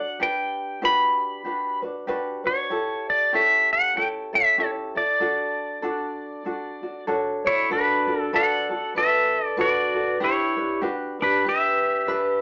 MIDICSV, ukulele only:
0, 0, Header, 1, 2, 480
1, 0, Start_track
1, 0, Key_signature, 2, "major"
1, 0, Tempo, 625000
1, 151, Time_signature, 4, 2, 24, 8
1, 5915, Key_signature, 2, "minor"
1, 9535, End_track
2, 0, Start_track
2, 0, Title_t, "Ukulele"
2, 0, Program_c, 0, 24
2, 0, Note_on_c, 0, 62, 39
2, 0, Note_on_c, 0, 66, 40
2, 0, Note_on_c, 0, 74, 49
2, 150, Note_off_c, 0, 62, 0
2, 150, Note_off_c, 0, 74, 0
2, 152, Note_on_c, 0, 67, 72
2, 154, Note_off_c, 0, 66, 0
2, 159, Note_on_c, 0, 62, 70
2, 165, Note_on_c, 0, 71, 79
2, 622, Note_off_c, 0, 62, 0
2, 626, Note_off_c, 0, 67, 0
2, 629, Note_off_c, 0, 71, 0
2, 629, Note_on_c, 0, 67, 69
2, 631, Note_on_c, 0, 62, 72
2, 636, Note_on_c, 0, 66, 77
2, 638, Note_on_c, 0, 71, 88
2, 1105, Note_off_c, 0, 62, 0
2, 1106, Note_off_c, 0, 67, 0
2, 1109, Note_off_c, 0, 66, 0
2, 1109, Note_on_c, 0, 67, 53
2, 1114, Note_on_c, 0, 62, 55
2, 1116, Note_off_c, 0, 71, 0
2, 1118, Note_on_c, 0, 66, 51
2, 1125, Note_on_c, 0, 71, 57
2, 1389, Note_off_c, 0, 71, 0
2, 1399, Note_off_c, 0, 66, 0
2, 1399, Note_off_c, 0, 67, 0
2, 1399, Note_on_c, 0, 71, 50
2, 1402, Note_off_c, 0, 62, 0
2, 1409, Note_on_c, 0, 66, 43
2, 1416, Note_on_c, 0, 62, 41
2, 1587, Note_off_c, 0, 62, 0
2, 1589, Note_off_c, 0, 66, 0
2, 1591, Note_on_c, 0, 67, 72
2, 1593, Note_off_c, 0, 71, 0
2, 1596, Note_on_c, 0, 62, 82
2, 1598, Note_on_c, 0, 66, 90
2, 1601, Note_on_c, 0, 71, 94
2, 1865, Note_off_c, 0, 71, 0
2, 1875, Note_on_c, 0, 71, 44
2, 1878, Note_off_c, 0, 66, 0
2, 1880, Note_off_c, 0, 67, 0
2, 1883, Note_off_c, 0, 62, 0
2, 1887, Note_on_c, 0, 66, 46
2, 1892, Note_on_c, 0, 62, 40
2, 2071, Note_off_c, 0, 71, 0
2, 2074, Note_on_c, 0, 67, 69
2, 2077, Note_off_c, 0, 66, 0
2, 2079, Note_off_c, 0, 62, 0
2, 2080, Note_on_c, 0, 64, 80
2, 2082, Note_on_c, 0, 69, 78
2, 2546, Note_off_c, 0, 67, 0
2, 2553, Note_off_c, 0, 64, 0
2, 2555, Note_on_c, 0, 67, 73
2, 2558, Note_on_c, 0, 61, 81
2, 2562, Note_off_c, 0, 69, 0
2, 2563, Note_on_c, 0, 64, 79
2, 2565, Note_on_c, 0, 69, 81
2, 3027, Note_off_c, 0, 67, 0
2, 3037, Note_off_c, 0, 64, 0
2, 3037, Note_on_c, 0, 67, 57
2, 3039, Note_off_c, 0, 61, 0
2, 3042, Note_on_c, 0, 61, 55
2, 3047, Note_off_c, 0, 69, 0
2, 3047, Note_on_c, 0, 64, 55
2, 3050, Note_on_c, 0, 69, 61
2, 3314, Note_off_c, 0, 69, 0
2, 3322, Note_off_c, 0, 64, 0
2, 3323, Note_on_c, 0, 69, 52
2, 3324, Note_off_c, 0, 67, 0
2, 3327, Note_off_c, 0, 61, 0
2, 3331, Note_on_c, 0, 64, 47
2, 3339, Note_on_c, 0, 61, 39
2, 3508, Note_off_c, 0, 61, 0
2, 3514, Note_off_c, 0, 64, 0
2, 3514, Note_on_c, 0, 67, 78
2, 3516, Note_off_c, 0, 69, 0
2, 3517, Note_on_c, 0, 61, 74
2, 3523, Note_on_c, 0, 64, 81
2, 3526, Note_on_c, 0, 69, 76
2, 3793, Note_off_c, 0, 69, 0
2, 3801, Note_off_c, 0, 64, 0
2, 3802, Note_on_c, 0, 69, 52
2, 3803, Note_off_c, 0, 67, 0
2, 3804, Note_off_c, 0, 61, 0
2, 3810, Note_on_c, 0, 64, 45
2, 3985, Note_off_c, 0, 69, 0
2, 3994, Note_on_c, 0, 69, 76
2, 3998, Note_off_c, 0, 64, 0
2, 3999, Note_on_c, 0, 62, 77
2, 4001, Note_on_c, 0, 66, 69
2, 4471, Note_off_c, 0, 69, 0
2, 4471, Note_on_c, 0, 69, 83
2, 4474, Note_off_c, 0, 62, 0
2, 4477, Note_on_c, 0, 62, 86
2, 4480, Note_off_c, 0, 66, 0
2, 4483, Note_on_c, 0, 66, 91
2, 4951, Note_off_c, 0, 69, 0
2, 4951, Note_on_c, 0, 69, 53
2, 4955, Note_off_c, 0, 62, 0
2, 4958, Note_on_c, 0, 62, 59
2, 4959, Note_off_c, 0, 66, 0
2, 4962, Note_on_c, 0, 66, 67
2, 5235, Note_off_c, 0, 66, 0
2, 5241, Note_off_c, 0, 62, 0
2, 5241, Note_off_c, 0, 69, 0
2, 5244, Note_on_c, 0, 66, 49
2, 5250, Note_on_c, 0, 62, 42
2, 5423, Note_off_c, 0, 62, 0
2, 5427, Note_off_c, 0, 66, 0
2, 5431, Note_on_c, 0, 69, 78
2, 5432, Note_on_c, 0, 62, 77
2, 5436, Note_on_c, 0, 66, 87
2, 5440, Note_on_c, 0, 73, 77
2, 5708, Note_off_c, 0, 73, 0
2, 5717, Note_off_c, 0, 66, 0
2, 5717, Note_on_c, 0, 73, 51
2, 5721, Note_off_c, 0, 62, 0
2, 5721, Note_off_c, 0, 69, 0
2, 5726, Note_on_c, 0, 66, 45
2, 5729, Note_on_c, 0, 62, 41
2, 5908, Note_off_c, 0, 62, 0
2, 5909, Note_off_c, 0, 66, 0
2, 5909, Note_off_c, 0, 73, 0
2, 5912, Note_on_c, 0, 71, 76
2, 5918, Note_on_c, 0, 62, 74
2, 5918, Note_on_c, 0, 66, 82
2, 5923, Note_on_c, 0, 69, 76
2, 6188, Note_off_c, 0, 69, 0
2, 6194, Note_off_c, 0, 71, 0
2, 6197, Note_off_c, 0, 66, 0
2, 6197, Note_on_c, 0, 69, 45
2, 6204, Note_off_c, 0, 62, 0
2, 6206, Note_on_c, 0, 66, 47
2, 6214, Note_on_c, 0, 62, 42
2, 6389, Note_off_c, 0, 62, 0
2, 6390, Note_off_c, 0, 66, 0
2, 6391, Note_off_c, 0, 69, 0
2, 6394, Note_on_c, 0, 71, 75
2, 6398, Note_on_c, 0, 62, 79
2, 6400, Note_on_c, 0, 66, 79
2, 6404, Note_on_c, 0, 69, 83
2, 6667, Note_off_c, 0, 69, 0
2, 6673, Note_off_c, 0, 71, 0
2, 6676, Note_off_c, 0, 66, 0
2, 6676, Note_on_c, 0, 69, 50
2, 6684, Note_off_c, 0, 62, 0
2, 6685, Note_on_c, 0, 66, 47
2, 6692, Note_on_c, 0, 62, 39
2, 6868, Note_off_c, 0, 69, 0
2, 6871, Note_off_c, 0, 62, 0
2, 6871, Note_on_c, 0, 71, 55
2, 6876, Note_off_c, 0, 66, 0
2, 6880, Note_on_c, 0, 62, 54
2, 6885, Note_on_c, 0, 66, 59
2, 6886, Note_on_c, 0, 69, 63
2, 7346, Note_off_c, 0, 71, 0
2, 7349, Note_on_c, 0, 71, 75
2, 7353, Note_off_c, 0, 62, 0
2, 7353, Note_off_c, 0, 66, 0
2, 7353, Note_off_c, 0, 69, 0
2, 7356, Note_on_c, 0, 62, 76
2, 7356, Note_on_c, 0, 66, 86
2, 7362, Note_on_c, 0, 69, 72
2, 7628, Note_off_c, 0, 69, 0
2, 7634, Note_off_c, 0, 71, 0
2, 7637, Note_on_c, 0, 69, 50
2, 7638, Note_off_c, 0, 66, 0
2, 7642, Note_off_c, 0, 62, 0
2, 7647, Note_on_c, 0, 66, 47
2, 7653, Note_on_c, 0, 62, 38
2, 7829, Note_off_c, 0, 62, 0
2, 7831, Note_off_c, 0, 69, 0
2, 7834, Note_on_c, 0, 67, 81
2, 7836, Note_off_c, 0, 66, 0
2, 7838, Note_on_c, 0, 62, 72
2, 7844, Note_on_c, 0, 71, 75
2, 8106, Note_off_c, 0, 71, 0
2, 8112, Note_off_c, 0, 67, 0
2, 8115, Note_on_c, 0, 71, 54
2, 8123, Note_off_c, 0, 62, 0
2, 8131, Note_on_c, 0, 62, 39
2, 8300, Note_off_c, 0, 62, 0
2, 8302, Note_off_c, 0, 71, 0
2, 8305, Note_on_c, 0, 67, 74
2, 8309, Note_on_c, 0, 62, 77
2, 8313, Note_on_c, 0, 66, 86
2, 8315, Note_on_c, 0, 71, 82
2, 8587, Note_off_c, 0, 71, 0
2, 8593, Note_off_c, 0, 67, 0
2, 8596, Note_on_c, 0, 71, 49
2, 8598, Note_off_c, 0, 62, 0
2, 8600, Note_off_c, 0, 66, 0
2, 8614, Note_on_c, 0, 62, 39
2, 8785, Note_off_c, 0, 71, 0
2, 8786, Note_off_c, 0, 62, 0
2, 8788, Note_on_c, 0, 67, 54
2, 8795, Note_on_c, 0, 62, 55
2, 8804, Note_on_c, 0, 71, 61
2, 9264, Note_off_c, 0, 62, 0
2, 9268, Note_off_c, 0, 67, 0
2, 9268, Note_on_c, 0, 67, 70
2, 9273, Note_on_c, 0, 62, 78
2, 9278, Note_off_c, 0, 71, 0
2, 9278, Note_on_c, 0, 71, 89
2, 9535, Note_off_c, 0, 62, 0
2, 9535, Note_off_c, 0, 67, 0
2, 9535, Note_off_c, 0, 71, 0
2, 9535, End_track
0, 0, End_of_file